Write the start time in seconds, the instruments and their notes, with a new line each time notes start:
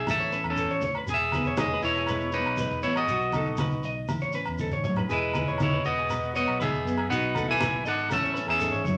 0.06 fingered electric bass A1, nylon-string guitar A2 E3 A3 C#4 E4, muted conga, high conga, low agogo, shekere
0.10 clean electric guitar A4 E5
0.20 clean electric guitar C#5, shekere
0.32 nylon-string guitar C#4, clean electric guitar B4, shekere
0.44 fingered electric bass E2, low agogo
0.50 clean electric guitar C#4 A4
0.55 nylon-string guitar E3, clean electric guitar A4, shekere
0.69 fingered electric bass A1, clean electric guitar C#5, shekere
0.80 fingered electric bass A2, clean electric guitar C#5, muted conga, high conga, shekere
0.95 clean electric guitar B4, low agogo
1.05 fingered electric bass E1, clean electric guitar G#4, muted nylon-string guitar stroke, muted conga, shekere
1.10 clean electric guitar G#4 E5
1.32 nylon-string guitar B3, clean electric guitar B4, muted conga, high conga, low agogo, shekere
1.44 fingered electric bass E1, clean electric guitar C#5, shekere
1.57 nylon-string guitar E3, clean electric guitar G#4 D#5, high conga, low agogo, shekere
1.73 clean electric guitar B4
1.82 fingered electric bass E1, clean electric guitar E4 C#5, shekere
1.95 clean electric guitar G#4, shekere
2.07 nylon-string guitar B2 G#3, clean electric guitar B4, muted conga, low agogo, shekere
2.20 shekere
2.32 clean electric guitar D#4 B4 C#5, shekere
2.37 nylon-string guitar B3
2.45 fingered electric bass B1, low agogo
2.57 nylon-string guitar E3 G#3, clean electric guitar B4, high conga, shekere
2.71 fingered electric bass E1, shekere
2.83 fingered electric bass A1, nylon-string guitar B3, clean electric guitar E4 C#5, muted conga, shekere
2.96 clean electric guitar F#4 G#4 D#5, low agogo
3.08 fingered electric bass B1, clean electric guitar F#4, muted nylon-string guitar stroke, muted conga, shekere
3.21 shekere
3.32 nylon-string guitar D#4, clean electric guitar A4, muted conga, high conga, low agogo, shekere
3.45 fingered electric bass B1, shekere
3.57 nylon-string guitar D#3, clean electric guitar B4, high conga, low agogo, shekere
3.71 shekere
3.83 fingered electric bass B1, clean electric guitar D#5, shekere
4.08 fingered electric bass A1, nylon-string guitar A2 E4, muted conga, high conga, low agogo, shekere
4.21 clean electric guitar C#5, shekere
4.33 nylon-string guitar C#4, clean electric guitar B4, shekere
4.46 fingered electric bass E2, low agogo, shekere
4.59 nylon-string guitar G#2, clean electric guitar A4, high conga, shekere
4.71 fingered electric bass A1, clean electric guitar C#5, high conga, shekere
4.84 nylon-string guitar F#2, fingered electric bass A2, clean electric guitar C#5, low conga, shekere
4.96 clean electric guitar B4, low conga, low agogo, shekere
5.08 fingered electric bass E1, nylon-string guitar E2 G#4, alto saxophone G#3, clean electric guitar E4 G#4 B4, muted conga, shekere
5.34 clean electric guitar B4, muted conga, high conga, low agogo, shekere
5.47 fingered electric bass E1, clean electric guitar C#5, shekere
5.58 nylon-string guitar E3, alto saxophone G#3, high conga, low agogo, shekere
5.62 clean electric guitar E4 C#5
5.73 clean electric guitar B4
5.85 fingered electric bass E1, alto saxophone B3, clean electric guitar F#4 D#5, shekere
5.97 clean electric guitar G#4, shekere
6.10 nylon-string guitar B2 G#3, clean electric guitar B4, muted conga, low agogo, shekere
6.23 shekere
6.35 alto saxophone B3, nylon-string guitar B3, clean electric guitar F#4 C#5 D#5, shekere
6.47 fingered electric bass B1, low agogo
6.60 nylon-string guitar E3 G#3, alto saxophone B3, clean electric guitar G#4 B4 E5, high conga, shekere
6.73 fingered electric bass E1, shekere
6.84 fingered electric bass F#2, nylon-string guitar B3, muted conga, shekere
6.97 clean electric guitar G#4, low agogo
7.09 fingered electric bass B1, nylon-string guitar B2 F#4, alto saxophone D#4, clean electric guitar F#4 B4 F#5, muted conga, shekere
7.35 clean electric guitar A4, muted conga, high conga, low agogo, shekere
7.47 fingered electric bass B1, alto saxophone E4, clean electric guitar B4 G#5, shekere
7.60 nylon-string guitar D#3, clean electric guitar B4, high conga, low agogo, shekere
7.83 fingered electric bass G#1, alto saxophone D#4, clean electric guitar A4 D#5, shekere
7.88 clean electric guitar F#5
7.99 shekere
8.08 fingered electric bass A1, nylon-string guitar A2 E4, alto saxophone C#4, clean electric guitar A4, muted conga, high conga, low agogo, shekere
8.13 clean electric guitar E5
8.24 clean electric guitar C#5, shekere
8.34 nylon-string guitar C#4, clean electric guitar B4, shekere
8.46 fingered electric bass E2, clean electric guitar G#4 E5, low agogo
8.51 alto saxophone C#4
8.60 nylon-string guitar G#2, clean electric guitar A4, shekere
8.72 fingered electric bass A1, clean electric guitar C#5, shekere
8.84 fingered electric bass F#1, nylon-string guitar F#2, clean electric guitar C#5, muted conga, high conga, shekere